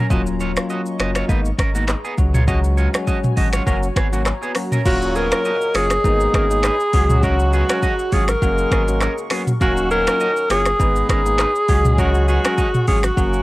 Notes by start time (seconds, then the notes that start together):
Already playing: F#3
0.10 D#1 F#3 A#3 C#4 F4 F#4 D#5 C#6, kick, shaker
0.27 shaker
0.40 F4 C#5, shaker
0.56 F#3 A#3 C#4 F4, finger snap, cross-stick, shaker
0.70 F#4 D#5, shaker
0.86 shaker
0.99 F#1 F#3 A#3 C#4 F4 F#4 D#5, finger snap, cross-stick, shaker
1.15 F4 C#5, finger snap, cross-stick, shaker
1.28 G#1 G#3 A#3 B3 D#4 B4, kick, shaker
1.45 shaker
1.58 G#1 C#4 A#4, finger snap, kick, cross-stick, shaker
1.75 G#3 A#3 B3 D#4 F#4, shaker
1.88 finger snap, cross-stick, clap, shaker
2.05 B3 G#4, shaker
2.18 C#2 F#3 G#3 C#4 F#4 C#5 G#5, kick, shaker
2.34 F4 C#5, mid tom, shaker
2.48 F#3 G#3 C#4 F#4 D#5, kick, shaker
2.64 shaker
2.77 F4 C#5, shaker
2.93 F#3 G#3 C#4 F#4, finger snap, cross-stick, shaker
3.07 F#4 D#5, kick, shaker
3.24 mid tom, shaker
3.36 G#1 F#3 G#3 C#4 F#4 D#5, kick, open hi-hat, shaker
3.53 F4 C#5, finger snap, cross-stick, shaker
3.66 F#1 F#3 A#3 C#4 F#4 A#4 A#5, kick, shaker
3.83 shaker
3.96 G#1 B3 G#4, finger snap, kick, cross-stick, shaker
4.12 F#3 A#3 C#4 F#4, shaker
4.25 finger snap, cross-stick, clap, shaker
4.43 B3 G#4, shaker
4.55 F#3 A#3 C#4 F#4, finger snap, cross-stick, open hi-hat, shaker
4.72 C#4 A#4, mid tom, shaker
4.85 D#1 A#2 C#3 F#3 A#3 C#4 F4 F#4 A#4 C#5 D#5 D#6, kick, crash, shaker
5.02 shaker
5.15 B3 G#4 A#4, shaker
5.32 F#3 A#3 C#4 F4 A#4, finger snap, cross-stick, shaker
5.45 F#4 D#5, shaker
5.61 shaker
5.74 F#1 F#3 A#3 C#4 F4 G#4 C#5, finger snap, cross-stick, open hi-hat, shaker
5.90 finger snap, cross-stick, shaker
6.04 G#1 B2 D#3 G#3 A#3 B3 D#4, kick, shaker
6.20 shaker
6.34 G#1 C#4 G#4 A#4, finger snap, kick, cross-stick, shaker
6.50 G#3 A#3 B3 D#4, shaker
6.63 D#4 B4, finger snap, cross-stick, clap, shaker
6.80 shaker
6.93 C#2 C#3 F#3 G#3 C#4 F#4 G#4 C#6, kick, open hi-hat, shaker
7.10 mid tom, shaker
7.23 F#3 G#3 C#4 F#4 A#4, kick, shaker
7.39 shaker
7.53 B3 F#4 G#4, shaker
7.69 F#3 G#3 C#4 F#4 A#4, finger snap, cross-stick, shaker
7.83 F#4 D#5, kick, shaker
7.99 shaker
8.12 G#1 F#3 G#3 C#4 F4 F#4 G#4 C#5, kick, open hi-hat, shaker
8.28 A#4, finger snap, cross-stick, shaker
8.42 F#1 C#3 F#3 G#3 A#3 C#4 F#4 G#4 A#4, kick, shaker
8.58 shaker
8.71 G#1 B3 G#4, finger snap, kick, cross-stick, shaker
8.88 F#3 A#3 C#4 F#4, shaker
9.01 C#4 A#4, finger snap, cross-stick, clap, shaker
9.18 shaker
9.30 F#3 A#3 B3 C#4 F#4 G#4, finger snap, cross-stick, open hi-hat, shaker
9.47 mid tom, shaker
9.61 D#1 D#3 F#3 A#3 C#4 F#4 A#4 C#5 F5 D#6, kick, shaker
9.77 shaker
9.91 B3 G#4 A#4, shaker
10.07 F#3 A#3 C#4 F4 A#4, finger snap, cross-stick, shaker
10.20 F#4 D#5, shaker
10.37 shaker
10.50 F#1 F#3 A#3 C#4 F4 G#4 C#5, finger snap, cross-stick, open hi-hat, shaker
10.66 finger snap, cross-stick, shaker
10.79 G#1 G#3 B3 D#4 B4, kick, shaker
10.96 shaker
11.09 G#1 C#4 G#4 A#4, finger snap, kick, cross-stick, shaker
11.26 G#3 A#3 B3 D#4, shaker
11.38 D#4 B4, finger snap, cross-stick, clap, shaker
11.55 shaker
11.68 C#2 F#3 G#3 C#4 F#4 G#4 F#5 C#6, kick, open hi-hat, shaker
11.85 mid tom, shaker
11.98 F#3 G#3 C#4 F#4 A#4, kick, shaker
12.15 shaker
12.28 B3 F#4 G#4, shaker
12.44 F#3 G#3 C#4 F#4 A#4, finger snap, cross-stick, shaker
12.58 F#4 D#5, kick, shaker
12.74 mid tom, shaker
12.87 G#1 F#3 G#3 C#4 F4 F#4 G#4 C#5, kick, open hi-hat, shaker
13.03 F#4, finger snap, cross-stick, shaker
13.17 F#1 F#3 A#3 C#4 F#4 A#4 C#6, kick, shaker
13.33 shaker